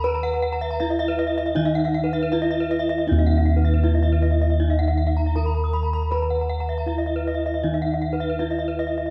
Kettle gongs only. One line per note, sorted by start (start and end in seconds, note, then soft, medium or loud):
0.00 1.55 D#2 medium
0.04 2.28 B4 medium
0.80 0.88 E4 soft
1.56 3.80 D#3 medium
2.32 2.40 E4 soft
3.07 5.31 D#4 medium
3.12 7.62 D#2 loud
3.84 3.92 E4 soft
5.36 5.44 E4 soft
6.12 8.36 B4 medium
6.88 6.96 E4 soft
7.64 9.10 D#3 medium
8.39 8.47 E4 soft